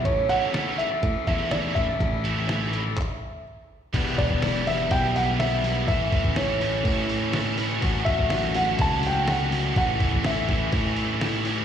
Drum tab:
CC |----------------|----------------|x---------------|----------------|
HH |x-x-x-x-x-x-x-x-|x-x-x-x---------|o-o-o-o-o-o-o-o-|o-o-o-o-o-o-o-o-|
CP |----------------|--------x-------|----------------|----------------|
SD |----o-------o--o|----o-----------|----o-o-----o---|----o-------o---|
BD |o-------o-o---o-|o-------o-------|o-oo----o-------|o-oo----o-------|

CC |----------------|----------------|
HH |o-o-o-o-o-o-o-o-|o-o-o-o-o-o-o-o-|
CP |----------------|----------------|
SD |----o-------o---|----o-o-----o---|
BD |o-oo----o-------|o-oo--o-o-------|